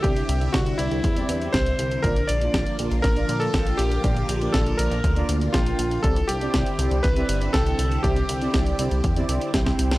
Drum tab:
HH |xxxxxxxxxxxxxxxx|xxxxxxxxxxxxxxxx|xxxxxxxxxxxxxxxx|xxxxxxxxxxxxxxxx|
SD |----o-------o---|----o---o---o---|----o-------o---|----o---o---o---|
BD |o---o---o---o---|o---o---o---o---|o---o---o---o---|o---o---o---o---|

HH |xxxxxxxxxxxxxxxx|
SD |----o-------oo-o|
BD |o---o---o---oo--|